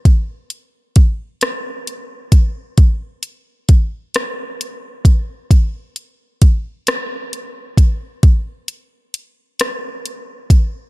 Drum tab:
HH |xxxxxx|xxxxxx|xxxxxx|xxxxxx|
SD |---r--|---r--|---r--|---r--|
BD |o-o--o|o-o--o|o-o--o|o----o|